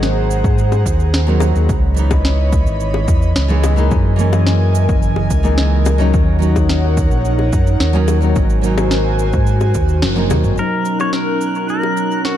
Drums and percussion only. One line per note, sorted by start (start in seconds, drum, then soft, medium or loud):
0.03 snare medium
0.03 cabasa soft
0.31 cabasa medium
0.44 kick loud
0.44 cabasa soft
0.58 cabasa soft
0.72 high bongo medium
0.72 cabasa soft
0.86 kick medium
0.86 cabasa medium
1.00 cabasa soft
1.14 snare loud
1.14 cabasa soft
1.40 high bongo medium
1.40 cabasa medium
1.56 cabasa soft
1.69 kick loud
1.69 cabasa soft
1.97 cabasa medium
2.11 kick medium
2.11 high bongo medium
2.11 cabasa soft
2.25 snare medium
2.25 cabasa soft
2.52 kick loud
2.52 cabasa medium
2.67 cabasa soft
2.80 cabasa soft
2.94 high bongo medium
3.08 kick loud
3.08 cabasa medium
3.22 cabasa soft
3.36 snare loud
3.36 cabasa soft
3.64 high bongo medium
3.64 cabasa medium
3.78 cabasa soft
3.91 kick loud
3.91 cabasa soft
4.19 cabasa medium
4.33 high bongo medium
4.33 cabasa soft
4.47 snare medium
4.47 cabasa soft
4.75 cabasa medium
4.89 kick loud
4.89 cabasa soft
5.03 cabasa soft
5.16 high bongo medium
5.30 kick medium
5.30 cabasa medium
5.44 cabasa soft
5.58 snare medium
5.58 cabasa soft
5.85 high bongo medium
5.85 cabasa medium
6.00 cabasa soft
6.14 kick loud
6.14 cabasa soft
6.42 cabasa medium
6.56 kick medium
6.56 high bongo medium
6.56 cabasa soft
6.69 snare medium
6.69 cabasa soft
6.97 kick medium
6.97 cabasa medium
7.11 cabasa soft
7.25 cabasa soft
7.39 high bongo medium
7.53 kick loud
7.53 cabasa medium
7.67 cabasa soft
7.80 snare medium
7.80 cabasa soft
8.08 high bongo medium
8.08 cabasa medium
8.22 cabasa soft
8.36 kick loud
8.36 cabasa soft
8.50 cabasa soft
8.64 cabasa medium
8.78 high bongo medium
8.78 cabasa soft
8.91 snare loud
8.91 cabasa soft
9.19 cabasa medium
9.33 kick loud
9.33 cabasa soft
9.47 cabasa soft
9.61 high bongo medium
9.61 cabasa soft
9.74 kick medium
9.74 cabasa medium
9.89 cabasa soft
10.02 snare loud
10.02 high tom medium
10.02 cabasa soft
10.16 high tom medium
10.30 mid tom medium
10.30 high bongo medium
10.30 cabasa medium
10.44 mid tom medium
10.44 cabasa soft
10.57 cabasa soft
10.85 cabasa medium
11.00 high bongo medium
11.00 cabasa soft
11.13 snare medium
11.13 cabasa soft
11.41 cabasa medium
11.55 cabasa soft
11.69 cabasa soft
11.83 high bongo medium
11.97 cabasa medium
12.11 cabasa soft
12.25 snare medium
12.25 cabasa soft